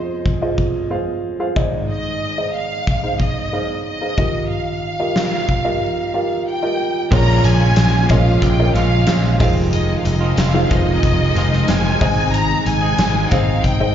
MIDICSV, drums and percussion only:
0, 0, Header, 1, 2, 480
1, 0, Start_track
1, 0, Key_signature, -4, "minor"
1, 0, Tempo, 652884
1, 1388, Time_signature, 4, 2, 24, 8
1, 10255, End_track
2, 0, Start_track
2, 0, Title_t, "Drums"
2, 188, Note_on_c, 9, 36, 82
2, 262, Note_off_c, 9, 36, 0
2, 426, Note_on_c, 9, 36, 67
2, 500, Note_off_c, 9, 36, 0
2, 1149, Note_on_c, 9, 36, 98
2, 1223, Note_off_c, 9, 36, 0
2, 2112, Note_on_c, 9, 36, 89
2, 2186, Note_off_c, 9, 36, 0
2, 2350, Note_on_c, 9, 36, 70
2, 2424, Note_off_c, 9, 36, 0
2, 3072, Note_on_c, 9, 36, 98
2, 3145, Note_off_c, 9, 36, 0
2, 3793, Note_on_c, 9, 38, 89
2, 3866, Note_off_c, 9, 38, 0
2, 4034, Note_on_c, 9, 36, 76
2, 4107, Note_off_c, 9, 36, 0
2, 5231, Note_on_c, 9, 54, 49
2, 5232, Note_on_c, 9, 49, 91
2, 5233, Note_on_c, 9, 36, 127
2, 5304, Note_off_c, 9, 54, 0
2, 5305, Note_off_c, 9, 49, 0
2, 5306, Note_off_c, 9, 36, 0
2, 5465, Note_on_c, 9, 54, 60
2, 5473, Note_on_c, 9, 42, 79
2, 5539, Note_off_c, 9, 54, 0
2, 5547, Note_off_c, 9, 42, 0
2, 5706, Note_on_c, 9, 54, 84
2, 5708, Note_on_c, 9, 42, 89
2, 5711, Note_on_c, 9, 38, 109
2, 5779, Note_off_c, 9, 54, 0
2, 5781, Note_off_c, 9, 42, 0
2, 5785, Note_off_c, 9, 38, 0
2, 5950, Note_on_c, 9, 42, 71
2, 5952, Note_on_c, 9, 54, 49
2, 5954, Note_on_c, 9, 36, 101
2, 6023, Note_off_c, 9, 42, 0
2, 6025, Note_off_c, 9, 54, 0
2, 6027, Note_off_c, 9, 36, 0
2, 6068, Note_on_c, 9, 54, 30
2, 6142, Note_off_c, 9, 54, 0
2, 6191, Note_on_c, 9, 36, 91
2, 6192, Note_on_c, 9, 42, 77
2, 6192, Note_on_c, 9, 54, 51
2, 6265, Note_off_c, 9, 36, 0
2, 6266, Note_off_c, 9, 42, 0
2, 6266, Note_off_c, 9, 54, 0
2, 6432, Note_on_c, 9, 54, 55
2, 6437, Note_on_c, 9, 42, 72
2, 6506, Note_off_c, 9, 54, 0
2, 6510, Note_off_c, 9, 42, 0
2, 6667, Note_on_c, 9, 42, 90
2, 6671, Note_on_c, 9, 38, 121
2, 6672, Note_on_c, 9, 54, 72
2, 6740, Note_off_c, 9, 42, 0
2, 6745, Note_off_c, 9, 38, 0
2, 6746, Note_off_c, 9, 54, 0
2, 6798, Note_on_c, 9, 54, 34
2, 6871, Note_off_c, 9, 54, 0
2, 6908, Note_on_c, 9, 54, 48
2, 6913, Note_on_c, 9, 36, 111
2, 6914, Note_on_c, 9, 46, 81
2, 6982, Note_off_c, 9, 54, 0
2, 6986, Note_off_c, 9, 36, 0
2, 6988, Note_off_c, 9, 46, 0
2, 7032, Note_on_c, 9, 54, 28
2, 7105, Note_off_c, 9, 54, 0
2, 7149, Note_on_c, 9, 54, 49
2, 7153, Note_on_c, 9, 42, 84
2, 7223, Note_off_c, 9, 54, 0
2, 7227, Note_off_c, 9, 42, 0
2, 7388, Note_on_c, 9, 54, 58
2, 7392, Note_on_c, 9, 42, 78
2, 7461, Note_off_c, 9, 54, 0
2, 7466, Note_off_c, 9, 42, 0
2, 7626, Note_on_c, 9, 54, 76
2, 7630, Note_on_c, 9, 42, 89
2, 7633, Note_on_c, 9, 38, 109
2, 7699, Note_off_c, 9, 54, 0
2, 7704, Note_off_c, 9, 42, 0
2, 7707, Note_off_c, 9, 38, 0
2, 7871, Note_on_c, 9, 54, 56
2, 7873, Note_on_c, 9, 42, 73
2, 7874, Note_on_c, 9, 36, 98
2, 7945, Note_off_c, 9, 54, 0
2, 7946, Note_off_c, 9, 42, 0
2, 7948, Note_off_c, 9, 36, 0
2, 8109, Note_on_c, 9, 54, 45
2, 8110, Note_on_c, 9, 36, 88
2, 8111, Note_on_c, 9, 42, 76
2, 8183, Note_off_c, 9, 54, 0
2, 8184, Note_off_c, 9, 36, 0
2, 8185, Note_off_c, 9, 42, 0
2, 8347, Note_on_c, 9, 54, 54
2, 8356, Note_on_c, 9, 42, 70
2, 8421, Note_off_c, 9, 54, 0
2, 8429, Note_off_c, 9, 42, 0
2, 8474, Note_on_c, 9, 38, 33
2, 8548, Note_off_c, 9, 38, 0
2, 8587, Note_on_c, 9, 42, 81
2, 8588, Note_on_c, 9, 54, 73
2, 8592, Note_on_c, 9, 38, 115
2, 8661, Note_off_c, 9, 42, 0
2, 8662, Note_off_c, 9, 54, 0
2, 8666, Note_off_c, 9, 38, 0
2, 8717, Note_on_c, 9, 54, 35
2, 8791, Note_off_c, 9, 54, 0
2, 8831, Note_on_c, 9, 36, 115
2, 8832, Note_on_c, 9, 54, 43
2, 8833, Note_on_c, 9, 46, 77
2, 8905, Note_off_c, 9, 36, 0
2, 8906, Note_off_c, 9, 54, 0
2, 8907, Note_off_c, 9, 46, 0
2, 9072, Note_on_c, 9, 42, 94
2, 9073, Note_on_c, 9, 54, 47
2, 9146, Note_off_c, 9, 42, 0
2, 9146, Note_off_c, 9, 54, 0
2, 9308, Note_on_c, 9, 54, 55
2, 9311, Note_on_c, 9, 42, 73
2, 9382, Note_off_c, 9, 54, 0
2, 9384, Note_off_c, 9, 42, 0
2, 9546, Note_on_c, 9, 54, 81
2, 9547, Note_on_c, 9, 42, 88
2, 9550, Note_on_c, 9, 38, 103
2, 9620, Note_off_c, 9, 54, 0
2, 9621, Note_off_c, 9, 42, 0
2, 9624, Note_off_c, 9, 38, 0
2, 9788, Note_on_c, 9, 42, 75
2, 9791, Note_on_c, 9, 54, 58
2, 9792, Note_on_c, 9, 36, 107
2, 9861, Note_off_c, 9, 42, 0
2, 9865, Note_off_c, 9, 36, 0
2, 9865, Note_off_c, 9, 54, 0
2, 10027, Note_on_c, 9, 54, 53
2, 10029, Note_on_c, 9, 36, 79
2, 10030, Note_on_c, 9, 42, 84
2, 10100, Note_off_c, 9, 54, 0
2, 10103, Note_off_c, 9, 36, 0
2, 10104, Note_off_c, 9, 42, 0
2, 10255, End_track
0, 0, End_of_file